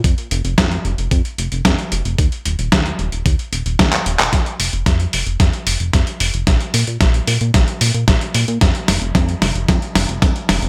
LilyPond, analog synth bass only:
\new Staff \with { instrumentName = "Analog synth bass" } { \clef bass \time 4/4 \key ees \mixolydian \tempo 4 = 112 f,16 r16 f,,16 f,,16 f,8 f,,16 f,,16 f,16 r16 f,,16 f,,16 f,16 r16 f,,16 f,,16 | ees,16 r16 ees,,16 ees,,16 ees,8 ees,,16 ees,,16 ees,16 r16 ees,,16 ees,,16 ees,8 ees,,16 ees,,16 | f,16 r16 f,,16 f,,16 f,8 f,,16 f,,16 f,16 r16 f,,16 f,,16 f,16 r16 f,,16 f,,16 | bes,,16 r16 bes,16 bes,16 bes,,8 bes,16 bes,16 bes,,16 r16 bes,16 bes,16 bes,,16 r16 bes,16 bes,16 |
f,16 r16 f,,16 f,,16 f,8 f,,16 f,,16 f,16 r16 f,,16 f,,16 f,16 r16 f,,16 f,,16 | }